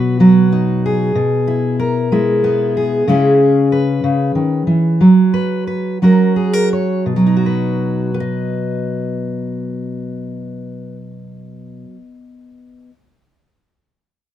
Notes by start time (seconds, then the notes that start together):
Already playing: B2 F#3 F#4 B4
0.20 F#3 F#4
0.52 D#4
0.86 G#4
1.15 B2
1.47 E4
1.79 A#4
2.12 G#3 E4
2.44 B3
2.77 G#4
3.08 C#3 G#3 C#4 E4 G#4
3.72 B4
4.04 C#3
4.35 D#3
4.67 E3
5.01 F#3
5.34 B4
5.67 B4
6.02 F#3 C#4 F#4 A#4
6.36 G#4
6.53 A#4
6.73 C#5
7.06 B2
7.16 F#3
7.26 D#4
7.36 F#4
7.46 B4
8.14 B4
8.20 D#5